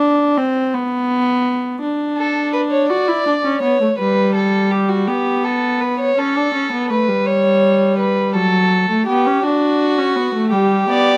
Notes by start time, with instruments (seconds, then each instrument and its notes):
Already playing: viola D4
0.37 viola C4
0.74 viola B3
1.82 viola D4
2.17 violin A4
2.53 violin B4
2.71 violin C#5
2.89 viola F#4, violin D5
3.08 viola E4
3.26 viola D4
3.44 viola C#4
3.61 viola B3, violin C#5
3.81 viola A3
3.98 viola G3, violin B4
4.34 violin A4
4.71 violin G4
4.89 violin F#4
5.07 viola B3, violin G4
5.44 violin A4
5.81 violin B4
6.00 violin C#5
6.17 viola C#4, violin A4
6.36 viola D4
6.54 viola C#4
6.72 viola B3
6.90 viola A3, violin B4
7.09 viola G3
7.26 violin C#5
7.98 violin B4
8.35 viola F#3, violin A4
8.90 viola A3
9.06 viola B3, violin G4
9.26 viola C#4
9.43 viola D4, violin F#4
9.98 viola C#4
10.16 viola B3
10.34 viola A3
10.50 viola G3, violin G4
10.89 viola B3, violin D5